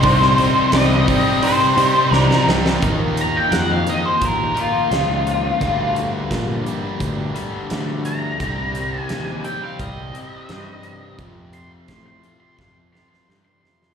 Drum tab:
HH |o-o-o-o-o-o-----|x-x-x-x-x-x-x-x-|x-x-x-x-x-x-x-x-|x-x-x-x-x-x-x-x-|
SD |-o--o-------oooo|----o-------o---|----o-------o---|----o-------o---|
BD |o-----o---------|o-------o-------|o---o---o-------|o-------o-------|

HH |x-x-x-x---------|
SD |----o---o-ooo-oo|
BD |o---o---o-------|